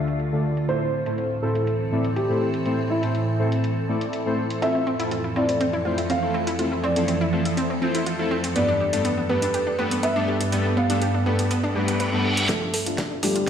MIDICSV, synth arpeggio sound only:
0, 0, Header, 1, 2, 480
1, 0, Start_track
1, 0, Tempo, 491803
1, 671, Time_signature, 4, 2, 24, 8
1, 13172, End_track
2, 0, Start_track
2, 0, Title_t, "Synth arpeggio sound"
2, 0, Program_c, 0, 84
2, 4511, Note_on_c, 0, 60, 93
2, 4593, Note_off_c, 0, 60, 0
2, 4636, Note_on_c, 0, 60, 67
2, 4740, Note_off_c, 0, 60, 0
2, 4751, Note_on_c, 0, 60, 95
2, 4833, Note_off_c, 0, 60, 0
2, 4876, Note_on_c, 0, 64, 96
2, 4951, Note_off_c, 0, 64, 0
2, 4991, Note_on_c, 0, 65, 77
2, 5073, Note_off_c, 0, 65, 0
2, 5116, Note_on_c, 0, 64, 74
2, 5161, Note_off_c, 0, 64, 0
2, 5231, Note_on_c, 0, 60, 92
2, 5313, Note_off_c, 0, 60, 0
2, 5356, Note_on_c, 0, 60, 72
2, 5460, Note_off_c, 0, 60, 0
2, 5471, Note_on_c, 0, 60, 99
2, 5553, Note_off_c, 0, 60, 0
2, 5596, Note_on_c, 0, 64, 92
2, 5671, Note_off_c, 0, 64, 0
2, 5711, Note_on_c, 0, 65, 75
2, 5793, Note_off_c, 0, 65, 0
2, 5836, Note_on_c, 0, 64, 73
2, 5881, Note_off_c, 0, 64, 0
2, 5951, Note_on_c, 0, 60, 96
2, 6032, Note_off_c, 0, 60, 0
2, 6076, Note_on_c, 0, 60, 71
2, 6179, Note_off_c, 0, 60, 0
2, 6191, Note_on_c, 0, 60, 89
2, 6272, Note_off_c, 0, 60, 0
2, 6316, Note_on_c, 0, 64, 97
2, 6391, Note_off_c, 0, 64, 0
2, 6431, Note_on_c, 0, 65, 80
2, 6513, Note_off_c, 0, 65, 0
2, 6556, Note_on_c, 0, 64, 70
2, 6601, Note_off_c, 0, 64, 0
2, 6671, Note_on_c, 0, 60, 102
2, 6753, Note_off_c, 0, 60, 0
2, 6796, Note_on_c, 0, 60, 74
2, 6900, Note_off_c, 0, 60, 0
2, 6912, Note_on_c, 0, 60, 98
2, 6993, Note_off_c, 0, 60, 0
2, 7036, Note_on_c, 0, 64, 96
2, 7111, Note_off_c, 0, 64, 0
2, 7152, Note_on_c, 0, 65, 72
2, 7233, Note_off_c, 0, 65, 0
2, 7276, Note_on_c, 0, 64, 76
2, 7321, Note_off_c, 0, 64, 0
2, 7391, Note_on_c, 0, 60, 103
2, 7473, Note_off_c, 0, 60, 0
2, 7516, Note_on_c, 0, 60, 74
2, 7620, Note_off_c, 0, 60, 0
2, 7632, Note_on_c, 0, 60, 101
2, 7713, Note_off_c, 0, 60, 0
2, 7756, Note_on_c, 0, 64, 91
2, 7831, Note_off_c, 0, 64, 0
2, 7871, Note_on_c, 0, 65, 77
2, 7952, Note_off_c, 0, 65, 0
2, 7996, Note_on_c, 0, 64, 74
2, 8041, Note_off_c, 0, 64, 0
2, 8111, Note_on_c, 0, 60, 91
2, 8193, Note_off_c, 0, 60, 0
2, 8236, Note_on_c, 0, 60, 75
2, 8346, Note_off_c, 0, 60, 0
2, 8351, Note_on_c, 0, 59, 98
2, 8432, Note_off_c, 0, 59, 0
2, 8476, Note_on_c, 0, 62, 94
2, 8551, Note_off_c, 0, 62, 0
2, 8591, Note_on_c, 0, 67, 70
2, 8673, Note_off_c, 0, 67, 0
2, 8716, Note_on_c, 0, 62, 72
2, 8761, Note_off_c, 0, 62, 0
2, 8831, Note_on_c, 0, 59, 94
2, 8912, Note_off_c, 0, 59, 0
2, 8956, Note_on_c, 0, 59, 71
2, 9060, Note_off_c, 0, 59, 0
2, 9071, Note_on_c, 0, 59, 94
2, 9153, Note_off_c, 0, 59, 0
2, 9196, Note_on_c, 0, 62, 96
2, 9271, Note_off_c, 0, 62, 0
2, 9311, Note_on_c, 0, 67, 82
2, 9393, Note_off_c, 0, 67, 0
2, 9436, Note_on_c, 0, 62, 73
2, 9481, Note_off_c, 0, 62, 0
2, 9551, Note_on_c, 0, 59, 101
2, 9633, Note_off_c, 0, 59, 0
2, 9676, Note_on_c, 0, 59, 72
2, 9780, Note_off_c, 0, 59, 0
2, 9792, Note_on_c, 0, 59, 98
2, 9873, Note_off_c, 0, 59, 0
2, 9916, Note_on_c, 0, 62, 96
2, 9991, Note_off_c, 0, 62, 0
2, 10032, Note_on_c, 0, 67, 73
2, 10113, Note_off_c, 0, 67, 0
2, 10156, Note_on_c, 0, 62, 73
2, 10201, Note_off_c, 0, 62, 0
2, 10272, Note_on_c, 0, 59, 92
2, 10353, Note_off_c, 0, 59, 0
2, 10396, Note_on_c, 0, 59, 72
2, 10500, Note_off_c, 0, 59, 0
2, 10512, Note_on_c, 0, 59, 100
2, 10593, Note_off_c, 0, 59, 0
2, 10636, Note_on_c, 0, 62, 99
2, 10711, Note_off_c, 0, 62, 0
2, 10752, Note_on_c, 0, 67, 79
2, 10833, Note_off_c, 0, 67, 0
2, 10876, Note_on_c, 0, 62, 73
2, 10921, Note_off_c, 0, 62, 0
2, 10991, Note_on_c, 0, 59, 97
2, 11073, Note_off_c, 0, 59, 0
2, 11116, Note_on_c, 0, 59, 73
2, 11220, Note_off_c, 0, 59, 0
2, 11232, Note_on_c, 0, 59, 101
2, 11313, Note_off_c, 0, 59, 0
2, 11356, Note_on_c, 0, 62, 101
2, 11431, Note_off_c, 0, 62, 0
2, 11471, Note_on_c, 0, 67, 72
2, 11590, Note_off_c, 0, 67, 0
2, 11596, Note_on_c, 0, 59, 72
2, 11706, Note_off_c, 0, 59, 0
2, 11712, Note_on_c, 0, 71, 81
2, 11760, Note_off_c, 0, 71, 0
2, 11836, Note_on_c, 0, 59, 71
2, 11946, Note_off_c, 0, 59, 0
2, 11952, Note_on_c, 0, 69, 71
2, 12033, Note_off_c, 0, 69, 0
2, 12076, Note_on_c, 0, 67, 75
2, 12151, Note_off_c, 0, 67, 0
2, 12191, Note_on_c, 0, 62, 97
2, 12273, Note_off_c, 0, 62, 0
2, 12316, Note_on_c, 0, 65, 95
2, 12391, Note_off_c, 0, 65, 0
2, 12432, Note_on_c, 0, 69, 72
2, 12513, Note_off_c, 0, 69, 0
2, 12556, Note_on_c, 0, 65, 72
2, 12601, Note_off_c, 0, 65, 0
2, 12671, Note_on_c, 0, 62, 97
2, 12753, Note_off_c, 0, 62, 0
2, 12796, Note_on_c, 0, 62, 76
2, 12899, Note_off_c, 0, 62, 0
2, 12911, Note_on_c, 0, 62, 100
2, 12993, Note_off_c, 0, 62, 0
2, 13036, Note_on_c, 0, 65, 96
2, 13111, Note_off_c, 0, 65, 0
2, 13172, End_track
0, 0, End_of_file